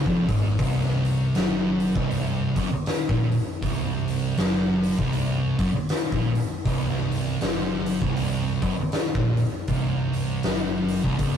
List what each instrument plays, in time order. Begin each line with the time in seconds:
0.06 fingered electric bass F1, distorted electric guitar F2, kick
0.29 fingered electric bass G#1, distorted electric guitar G#2, kick, open hi-hat
0.59 fingered electric bass C1, distorted electric guitar C2, kick, open hi-hat
0.83 snare
1.05 open hi-hat
1.35 fingered electric bass F#1, distorted electric guitar F#2, snare, open hi-hat
1.80 open hi-hat
1.95 fingered electric bass C1, distorted electric guitar C2, kick
2.11 open hi-hat
2.56 fingered electric bass F#1, distorted electric guitar F#2, kick, open hi-hat
2.72 muted distorted electric guitar stroke, muted fingered electric bass stroke
2.86 snare, open hi-hat
3.09 fingered electric bass A#1, distorted electric guitar A#2, kick
3.32 open hi-hat
3.63 fingered electric bass C1, distorted electric guitar C2, kick, open hi-hat
4.08 open hi-hat
4.37 fingered electric bass F#1, distorted electric guitar F#2, snare, open hi-hat
4.83 open hi-hat
4.99 fingered electric bass C1, distorted electric guitar C2, kick
5.13 open hi-hat
5.59 fingered electric bass F#1, distorted electric guitar F#2, kick, open hi-hat
5.74 muted distorted electric guitar stroke, muted fingered electric bass stroke
5.89 snare, open hi-hat
6.12 fingered electric bass A#1, distorted electric guitar A#2, kick
6.35 open hi-hat
6.65 fingered electric bass C1, distorted electric guitar C2, kick, open hi-hat
6.90 snare
7.11 open hi-hat
7.41 fingered electric bass F#1, distorted electric guitar F#2, snare, open hi-hat
7.86 open hi-hat
8.02 fingered electric bass C1, distorted electric guitar C2, kick
8.17 open hi-hat
8.62 fingered electric bass F#1, distorted electric guitar F#2, kick, open hi-hat
8.78 muted fingered electric bass stroke, muted distorted electric guitar stroke
8.92 snare, open hi-hat
9.15 fingered electric bass A#1, distorted electric guitar A#2, kick
9.37 open hi-hat
9.68 fingered electric bass C1, distorted electric guitar C2, kick, open hi-hat
10.13 open hi-hat
10.43 fingered electric bass F#1, distorted electric guitar F#2, snare, open hi-hat
10.88 open hi-hat
11.04 fingered electric bass C1, distorted electric guitar C2, kick
11.19 fingered electric bass C#1, distorted electric guitar C#2, kick, open hi-hat